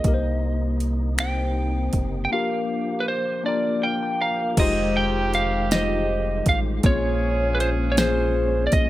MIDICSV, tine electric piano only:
0, 0, Header, 1, 2, 480
1, 0, Start_track
1, 0, Key_signature, -4, "minor"
1, 0, Tempo, 754717
1, 29, Time_signature, 6, 3, 24, 8
1, 5658, End_track
2, 0, Start_track
2, 0, Title_t, "Tine electric piano"
2, 0, Program_c, 0, 4
2, 0, Control_c, 0, 64, 127
2, 23, Note_on_c, 0, 58, 74
2, 28, Note_on_c, 0, 60, 59
2, 35, Note_on_c, 0, 63, 65
2, 36, Control_c, 0, 64, 0
2, 42, Note_on_c, 0, 67, 67
2, 49, Note_on_c, 0, 70, 66
2, 80, Note_off_c, 0, 70, 0
2, 88, Note_on_c, 0, 72, 72
2, 135, Control_c, 0, 64, 127
2, 511, Note_off_c, 0, 58, 0
2, 514, Note_off_c, 0, 60, 0
2, 517, Note_off_c, 0, 63, 0
2, 521, Note_off_c, 0, 67, 0
2, 544, Note_off_c, 0, 72, 0
2, 745, Note_on_c, 0, 58, 52
2, 751, Note_on_c, 0, 60, 57
2, 759, Note_on_c, 0, 63, 51
2, 767, Note_on_c, 0, 67, 50
2, 774, Note_on_c, 0, 72, 57
2, 1233, Note_off_c, 0, 58, 0
2, 1236, Note_off_c, 0, 60, 0
2, 1240, Note_off_c, 0, 63, 0
2, 1243, Note_off_c, 0, 67, 0
2, 1247, Note_off_c, 0, 72, 0
2, 1465, Note_on_c, 0, 58, 71
2, 1471, Note_on_c, 0, 62, 68
2, 1476, Control_c, 0, 64, 0
2, 1479, Note_on_c, 0, 65, 66
2, 1484, Note_on_c, 0, 67, 68
2, 1490, Note_on_c, 0, 70, 74
2, 1593, Control_c, 0, 64, 127
2, 1952, Note_off_c, 0, 58, 0
2, 1956, Note_off_c, 0, 62, 0
2, 1960, Note_off_c, 0, 65, 0
2, 1962, Note_off_c, 0, 67, 0
2, 1965, Note_off_c, 0, 70, 0
2, 2184, Note_on_c, 0, 58, 66
2, 2191, Note_on_c, 0, 62, 64
2, 2201, Note_on_c, 0, 65, 68
2, 2204, Note_on_c, 0, 67, 63
2, 2214, Note_on_c, 0, 70, 79
2, 2444, Note_on_c, 0, 77, 68
2, 2548, Note_off_c, 0, 77, 0
2, 2562, Note_on_c, 0, 79, 66
2, 2667, Note_off_c, 0, 79, 0
2, 2672, Note_off_c, 0, 58, 0
2, 2676, Note_off_c, 0, 62, 0
2, 2680, Note_off_c, 0, 65, 0
2, 2682, Note_off_c, 0, 67, 0
2, 2682, Note_on_c, 0, 82, 62
2, 2687, Note_off_c, 0, 70, 0
2, 2899, Note_off_c, 0, 82, 0
2, 2908, Note_on_c, 0, 56, 76
2, 2916, Control_c, 0, 64, 0
2, 2917, Note_on_c, 0, 63, 74
2, 2922, Note_on_c, 0, 65, 75
2, 2931, Note_on_c, 0, 67, 71
2, 2934, Note_on_c, 0, 72, 90
2, 3041, Control_c, 0, 64, 127
2, 3394, Note_off_c, 0, 56, 0
2, 3398, Note_off_c, 0, 63, 0
2, 3401, Note_off_c, 0, 65, 0
2, 3405, Note_off_c, 0, 67, 0
2, 3407, Note_off_c, 0, 72, 0
2, 3632, Note_on_c, 0, 55, 46
2, 3638, Note_on_c, 0, 63, 56
2, 3644, Note_on_c, 0, 65, 64
2, 3651, Note_on_c, 0, 67, 53
2, 3659, Note_on_c, 0, 72, 72
2, 3671, Note_off_c, 0, 55, 0
2, 3673, Note_on_c, 0, 56, 55
2, 4119, Note_off_c, 0, 63, 0
2, 4122, Note_off_c, 0, 65, 0
2, 4125, Note_off_c, 0, 67, 0
2, 4129, Note_off_c, 0, 72, 0
2, 4137, Note_off_c, 0, 56, 0
2, 4345, Note_on_c, 0, 58, 75
2, 4355, Note_on_c, 0, 60, 58
2, 4357, Control_c, 0, 64, 0
2, 4360, Note_on_c, 0, 65, 78
2, 4368, Note_on_c, 0, 68, 68
2, 4375, Note_on_c, 0, 73, 88
2, 4393, Note_off_c, 0, 60, 0
2, 4394, Note_on_c, 0, 61, 71
2, 4450, Control_c, 0, 64, 127
2, 4832, Note_off_c, 0, 58, 0
2, 4840, Note_off_c, 0, 65, 0
2, 4844, Note_off_c, 0, 68, 0
2, 4847, Note_off_c, 0, 73, 0
2, 4857, Note_off_c, 0, 61, 0
2, 5068, Note_on_c, 0, 58, 62
2, 5072, Note_on_c, 0, 61, 56
2, 5081, Note_on_c, 0, 65, 52
2, 5088, Note_on_c, 0, 68, 57
2, 5095, Note_on_c, 0, 72, 67
2, 5554, Note_off_c, 0, 58, 0
2, 5556, Note_off_c, 0, 61, 0
2, 5560, Note_off_c, 0, 65, 0
2, 5564, Note_off_c, 0, 68, 0
2, 5568, Note_off_c, 0, 72, 0
2, 5658, End_track
0, 0, End_of_file